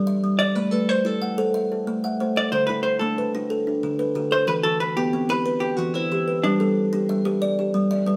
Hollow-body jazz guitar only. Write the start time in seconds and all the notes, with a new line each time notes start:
0.39 D5
0.55 B4
0.71 A4
0.89 C5
1.06 A4
2.37 D5
2.52 C5
2.67 B4
2.83 C5
2.99 A4
4.32 C5
4.48 B4
4.63 A4
4.80 B4
4.97 G4
5.30 B4
5.60 G4
5.76 F#4
5.94 E4
6.43 D4